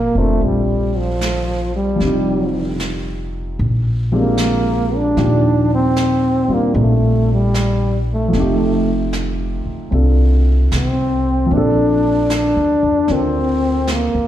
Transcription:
Already playing: upright bass G1, upright piano A#2 F3 C4 D4 A4, trombone A#3
0.15 upright bass F1, upright piano C4 D4 F4 C5
0.19 trombone A3
0.41 upright bass A#1, brush sweep
0.45 trombone G3
0.98 trombone F3
1.21 snare, hi-hat pedal
1.76 trombone G3
1.96 upright piano F3 G3
2.00 upright bass F1, upright piano C4 D#4, brush sweep, snare
2.07 upright piano G4
2.80 snare, hi-hat pedal
3.58 upright bass A#1, brush sweep
4.12 upright piano F3 G#3 C4 D4 G4
4.19 trombone A#3
4.38 snare, hi-hat pedal
4.96 trombone D4
5.16 upright bass D#2, upright piano A#2 D#3 F3 D4 G4, brush sweep, snare
5.75 trombone C4
5.96 snare, hi-hat pedal
6.48 upright piano G3 C4 D4 F4, muted upright bass stroke
6.54 trombone A#3
6.74 upright bass A#1, trombone G#3, brush sweep
6.80 trombone A3
7.33 trombone G3
7.54 snare, hi-hat pedal
8.13 trombone A3
8.28 upright piano F3 A3
8.33 upright bass F1, upright piano C4 D#4, brush sweep, snare
8.40 upright piano G4
9.13 snare, hi-hat pedal
9.66 muted upright bass stroke
9.91 upright bass C2, upright piano C4 D4 F4 A4, brush sweep
10.72 upright bass C2, trombone C4, snare, hi-hat pedal
11.46 upright piano F3 A#3
11.51 upright bass A#1, upright piano C4 D4, trombone D4, brush sweep
11.57 upright piano A4
12.30 snare, hi-hat pedal
12.35 trombone D4
12.57 upright bass D2
12.83 upright bass F2
13.08 upright bass D2, upright piano C4 D4 F4 A#4, brush sweep, snare
13.14 trombone C4
13.87 snare, hi-hat pedal
13.92 trombone A#3
14.15 upright bass F2

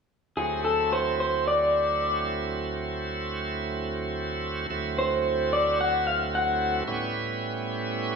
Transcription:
0.36 tonewheel organ D2 F#3 A3 C4 E4, clean electric guitar G#4
0.65 clean electric guitar A4
0.93 clean electric guitar C5
1.20 clean electric guitar C5
1.48 clean electric guitar D5
4.70 tonewheel organ D2 F#3 A3 C4 E4
4.98 clean electric guitar C5
5.53 clean electric guitar D5
5.81 clean electric guitar F#5
6.07 clean electric guitar F5
6.35 clean electric guitar F#5
6.87 tonewheel organ A2 G3 B3 C#4 E4

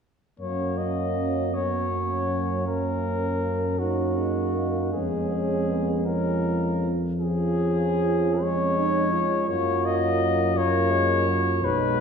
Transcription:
0.39 tuba F#2, euphonium F#3 A#3, french horn section C#4, flugelhorn C#5
0.78 flugelhorn D#5
1.54 euphonium F#3 C#4, french horn section B3, flugelhorn C#5
1.89 french horn section A#3
2.27 french horn section A#3
2.67 euphonium A#3, flugelhorn A#4
3.79 euphonium A#3 C#4, french horn section D#4, flugelhorn F#4
4.17 euphonium G#3
4.55 euphonium A#3
4.93 tuba F2, euphonium G#3 B3, french horn section C#4, flugelhorn G#4
5.32 euphonium C#4
5.69 euphonium B3
6.05 euphonium C#4, french horn section F4, flugelhorn A#4
7.18 euphonium F3 C#4, french horn section F4, flugelhorn G#4
8.41 euphonium G#3, french horn section C#4, flugelhorn C#5
8.77 french horn section D#4
9.12 french horn section F4
9.48 tuba F#2, euphonium F#3 A#3, flugelhorn C#5
9.86 flugelhorn D#5
10.55 euphonium A#3, flugelhorn C#5
10.91 euphonium G#3
11.27 euphonium F#3
11.62 tuba B1, euphonium G#3, french horn section D#4, flugelhorn B4

